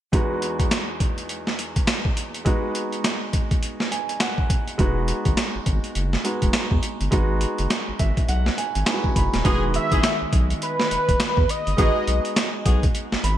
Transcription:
0.12 E2 G#3 B3 D#4 F#4, kick, closed hi-hat
0.42 closed hi-hat
0.60 kick, closed hi-hat
0.71 snare, clap, closed hi-hat
1.00 kick, closed hi-hat
1.18 closed hi-hat
1.29 closed hi-hat
1.47 snare
1.59 closed hi-hat
1.76 kick, closed hi-hat
1.87 snare, clap, closed hi-hat
2.05 kick
2.17 closed hi-hat
2.34 closed hi-hat
2.45 G#3 B3 D#4 F#4, kick, closed hi-hat
2.75 closed hi-hat
2.93 closed hi-hat
3.04 snare, clap, closed hi-hat
3.33 kick, closed hi-hat
3.51 kick, closed hi-hat
3.63 closed hi-hat
3.80 snare
3.92 G#5, closed hi-hat
4.09 closed hi-hat
4.20 F#5, snare, clap, closed hi-hat
4.38 kick
4.50 kick, closed hi-hat
4.68 closed hi-hat
4.78 E1 G#3 B3 D#4 F#4, kick, closed hi-hat
5.08 closed hi-hat
5.25 G#1, kick, closed hi-hat
5.37 snare, clap, closed hi-hat
5.55 G#1
5.66 G#1, kick, closed hi-hat
5.84 closed hi-hat
5.95 F#1, closed hi-hat
6.13 snare
6.24 G#3 B3 D#4 F#4, closed hi-hat
6.42 E1, kick, closed hi-hat
6.53 snare, clap, closed hi-hat
6.71 E2, kick
6.83 closed hi-hat
7.01 G1, closed hi-hat
7.11 G#1 G#3 B3 D#4 F#4, kick, closed hi-hat
7.41 closed hi-hat
7.58 F#1, closed hi-hat
7.70 snare, clap, closed hi-hat
7.88 G#1
7.99 G#1 E5, kick, closed hi-hat
8.17 kick, closed hi-hat
8.28 B1 F#5, closed hi-hat
8.46 snare
8.58 G#5, closed hi-hat
8.75 G#1, closed hi-hat
8.86 G#3 B3 D#4 E4 G#5, snare, clap, closed hi-hat
8.94 F#4
9.04 kick
9.16 F#1 B5, kick, closed hi-hat
9.34 D#1, snare, closed hi-hat
9.44 E1 D#3 G#3 B3 D#4 E4 F#4 G#4, kick, closed hi-hat
9.74 E5, closed hi-hat
9.92 G#1 D#4 E4 G#4, kick, closed hi-hat
10.03 snare, clap, closed hi-hat
10.22 B1
10.33 B1, kick, closed hi-hat
10.50 closed hi-hat
10.62 B4, closed hi-hat
10.80 snare
10.91 E1, closed hi-hat
11.09 E1, kick, closed hi-hat
11.20 snare, clap, closed hi-hat
11.37 E2, kick
11.49 D#5, closed hi-hat
11.67 G1, closed hi-hat
11.77 G#1 G#3 B3 D#4 F#4 G#4, kick, closed hi-hat
12.07 B1, closed hi-hat
12.25 closed hi-hat
12.36 snare, clap, closed hi-hat
12.65 B1 B3 F#4 G#4, kick, closed hi-hat
12.83 kick, closed hi-hat
12.95 closed hi-hat
13.12 G#1, snare
13.24 G#1 B5, closed hi-hat

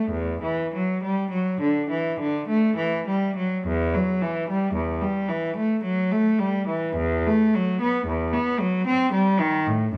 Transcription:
Already playing: A3
0.10 E2
0.42 E3
0.74 F#3
1.03 G3
1.30 F#3
1.60 D3
1.89 E3
2.19 D3
2.48 A3
2.76 E3
3.06 G3
3.36 F#3
3.66 E2
3.94 F#3
4.22 E3
4.49 G3
4.74 E2
5.00 G3
5.28 E3
5.56 A3
5.83 F#3
6.11 A3
6.38 G3
6.67 E3
6.95 E2
7.26 A3
7.54 F#3
7.80 B3
8.06 E2
8.33 B3
8.59 F#3
8.86 C4
9.12 G3
9.40 D#3
9.66 A2
9.92 F#2

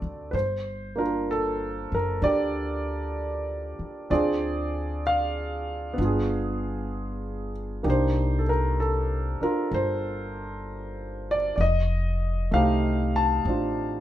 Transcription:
Already playing: C4 D4 F#4 A4 D5
0.02 D2
0.31 G1 B4 C5
0.96 A#3 D4 F4 A#4
1.31 A4
1.92 F#1 A#4
2.21 D2 D4 G4 D5
3.79 muted upright bass stroke
4.10 D2 C4 D4 F4 G#4 D5
5.07 F5
5.94 B3 D4
5.98 G1 F4
6.05 G#4
7.83 C2 A#3 D4 D#4 G4
7.90 C5
8.39 A4
8.49 A#4
8.80 A4
9.41 D4 F4 A#4, muted upright bass stroke
9.71 G1 C5
11.31 D5
11.56 F1 D5
11.61 D#5
12.51 C2 A3 C4 D#4 F5
12.56 G4
13.16 A5
13.45 A1 C4 D4
13.50 F4

